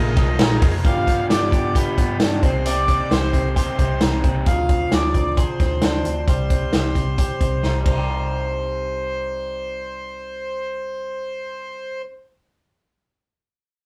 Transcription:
Already playing: picked electric bass A#1, overdriven electric guitar A#2 D#3 G#3 D#4 F4, transistor combo organ D#4 F4 G#4 A#4, clean electric guitar F4, accordion D#5
0.17 picked electric bass C2, overdriven electric guitar G#3 D#4 F4, kick, snare, ride
0.39 picked electric bass A#1, overdriven electric guitar D#3 G#3 D#4 F4, transistor combo organ D#4 F4 G#4 A#4, snare, ride
0.62 picked electric bass F1, overdriven electric guitar G#3 D#4 F4, kick, open hi-hat, ride
0.84 picked electric bass G1, overdriven electric guitar G2 D3 F3 B3 D4 G4, accordion F5, kick, closed hi-hat
1.07 overdriven electric guitar F3 B3 D4 G4, kick, closed hi-hat
1.29 picked electric bass G1, overdriven electric guitar G2 D3 F3 B3 D4 G4, accordion D5, snare, closed hi-hat
1.52 picked electric bass G1, overdriven electric guitar F3 B3 D4 G4, kick, closed hi-hat
1.75 overdriven electric guitar F3 B3 D4 G4, accordion B4, kick, closed hi-hat
1.97 picked electric bass G1, overdriven electric guitar F3 B3 D4 G4, kick, closed hi-hat
2.20 picked electric bass G1, overdriven electric guitar G2 D3 F3 B3 D4 G4, snare, closed hi-hat
2.42 picked electric bass C2, overdriven electric guitar C4 D#4 G4, accordion C5, kick, closed hi-hat
2.65 overdriven electric guitar C3 G3 C4 D#4 G4, accordion D5, closed hi-hat
2.88 overdriven electric guitar C4 D#4 G4, kick, closed hi-hat
3.10 picked electric bass C2, overdriven electric guitar C3 G3 C4 D#4 G4, accordion C5, snare, closed hi-hat
3.33 picked electric bass C2, overdriven electric guitar C4 D#4 G4, kick, closed hi-hat
3.56 overdriven electric guitar G3 C4 D#4 G4, accordion C5, kick, closed hi-hat
3.78 picked electric bass C2, overdriven electric guitar C4 D#4 G4, kick, closed hi-hat
4.01 picked electric bass C2, overdriven electric guitar C3 G3 C4 D#4 G4, snare, closed hi-hat
4.23 picked electric bass C2, overdriven electric guitar C4 D#4 G4, kick, closed hi-hat
4.46 picked electric bass D2, clean electric guitar F3 G#4, accordion F5, kick, closed hi-hat
4.69 clean electric guitar C4, kick, closed hi-hat
4.92 picked electric bass D2, clean electric guitar G#4, accordion D5, snare, closed hi-hat
5.14 picked electric bass D2, clean electric guitar C4, kick, closed hi-hat
5.37 clean electric guitar G#4, accordion C5, kick, closed hi-hat
5.60 picked electric bass D2, clean electric guitar C4, kick, snare, closed hi-hat
5.82 picked electric bass D2, clean electric guitar D4, snare, closed hi-hat
6.05 picked electric bass D2, clean electric guitar C4, closed hi-hat
6.28 picked electric bass C2, clean electric guitar G3 G4, accordion C5, kick, closed hi-hat
6.50 clean electric guitar C4, kick, closed hi-hat
6.73 picked electric bass C2, clean electric guitar G4, snare, closed hi-hat
6.95 picked electric bass C2, clean electric guitar C4, kick, closed hi-hat
7.18 clean electric guitar G4, kick, closed hi-hat
7.41 picked electric bass C2, clean electric guitar C4, kick, closed hi-hat
7.63 picked electric bass C2, clean electric guitar D#4, snare
7.81 clean electric guitar G3
7.86 picked electric bass C2, clean electric guitar C4, accordion C5, kick, ride
7.93 clean electric guitar D#4
7.98 clean electric guitar G4

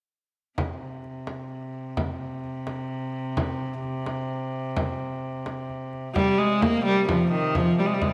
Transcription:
0.58 viola da gamba C3, frame drum
1.04 frame drum
1.27 frame drum
1.97 frame drum
2.44 frame drum
2.67 frame drum
3.37 frame drum
3.84 frame drum
4.06 frame drum
4.77 frame drum
5.46 frame drum
5.69 frame drum
5.93 frame drum
6.15 viola da gamba C3 G3, frame drum
6.39 viola da gamba G#3
6.62 viola da gamba A#3, frame drum
6.86 viola da gamba G3, frame drum
7.09 viola da gamba F3, frame drum
7.32 viola da gamba D#3
7.55 viola da gamba F3, frame drum
7.79 viola da gamba G3
7.86 viola da gamba G#3
7.94 viola da gamba G3
8.02 viola da gamba G#3, frame drum
8.09 viola da gamba G3

